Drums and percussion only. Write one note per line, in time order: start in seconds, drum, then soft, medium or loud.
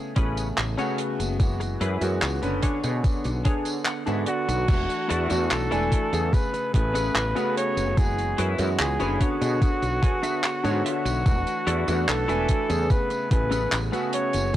0.16 kick medium
0.16 closed hi-hat loud
0.37 closed hi-hat medium
0.37 tambourine medium
0.57 clap loud
0.57 closed hi-hat medium
0.57 tambourine soft
0.78 closed hi-hat soft
0.78 tambourine soft
0.98 closed hi-hat loud
1.20 closed hi-hat medium
1.20 tambourine soft
1.40 kick loud
1.40 closed hi-hat medium
1.40 tambourine medium
1.60 closed hi-hat soft
1.60 tambourine soft
1.81 closed hi-hat medium
2.01 closed hi-hat medium
2.01 tambourine medium
2.22 clap loud
2.22 closed hi-hat medium
2.22 tambourine soft
2.43 closed hi-hat soft
2.43 tambourine soft
2.62 kick medium
2.62 closed hi-hat loud
2.84 closed hi-hat medium
2.84 tambourine medium
3.04 kick loud
3.04 closed hi-hat medium
3.04 tambourine soft
3.24 closed hi-hat soft
3.24 tambourine soft
3.45 kick loud
3.45 closed hi-hat loud
3.65 closed hi-hat medium
3.65 tambourine medium
3.85 clap loud
3.85 closed hi-hat medium
3.85 tambourine soft
4.07 closed hi-hat soft
4.07 tambourine soft
4.26 closed hi-hat medium
4.49 closed hi-hat medium
4.49 tambourine medium
4.68 kick loud
4.68 closed hi-hat medium
4.68 crash loud
4.68 tambourine soft
4.89 closed hi-hat soft
4.89 tambourine soft
5.10 closed hi-hat loud
5.30 closed hi-hat medium
5.30 tambourine medium
5.51 clap loud
5.51 closed hi-hat medium
5.51 tambourine soft
5.72 closed hi-hat soft
5.72 tambourine soft
5.92 kick medium
5.92 closed hi-hat loud
6.13 closed hi-hat medium
6.13 tambourine medium
6.33 kick loud
6.33 closed hi-hat medium
6.33 tambourine soft
6.54 closed hi-hat soft
6.54 tambourine soft
6.74 kick loud
6.74 closed hi-hat loud
6.95 closed hi-hat medium
6.95 tambourine medium
7.16 clap loud
7.16 closed hi-hat medium
7.16 tambourine medium
7.36 closed hi-hat soft
7.36 tambourine soft
7.57 closed hi-hat loud
7.77 closed hi-hat medium
7.77 tambourine medium
7.97 kick loud
7.97 closed hi-hat medium
7.97 tambourine soft
8.18 closed hi-hat soft
8.18 tambourine soft
8.38 closed hi-hat loud
8.58 closed hi-hat medium
8.58 tambourine medium
8.79 clap loud
8.79 closed hi-hat medium
8.79 tambourine soft
9.00 closed hi-hat soft
9.00 tambourine soft
9.21 kick medium
9.21 closed hi-hat medium
9.42 closed hi-hat medium
9.42 tambourine medium
9.62 kick loud
9.62 closed hi-hat medium
9.62 tambourine soft
9.82 closed hi-hat soft
9.82 tambourine soft
10.03 kick loud
10.03 closed hi-hat medium
10.23 closed hi-hat medium
10.23 tambourine medium
10.44 clap loud
10.44 closed hi-hat medium
10.44 tambourine soft
10.64 closed hi-hat soft
10.64 tambourine soft
10.86 closed hi-hat loud
11.06 closed hi-hat medium
11.06 tambourine medium
11.26 kick loud
11.26 closed hi-hat medium
11.26 tambourine soft
11.47 closed hi-hat soft
11.47 tambourine soft
11.67 closed hi-hat loud
11.88 closed hi-hat medium
11.88 tambourine medium
12.08 clap loud
12.08 closed hi-hat medium
12.08 tambourine soft
12.29 closed hi-hat soft
12.29 tambourine soft
12.49 kick medium
12.49 closed hi-hat loud
12.70 closed hi-hat medium
12.70 tambourine soft
12.90 kick loud
12.90 closed hi-hat medium
12.90 tambourine soft
13.10 closed hi-hat soft
13.10 tambourine soft
13.31 kick loud
13.31 closed hi-hat loud
13.52 closed hi-hat medium
13.52 tambourine medium
13.72 clap loud
13.72 closed hi-hat medium
13.72 tambourine soft
13.93 closed hi-hat soft
13.93 tambourine soft
14.13 closed hi-hat loud
14.33 closed hi-hat medium
14.33 tambourine medium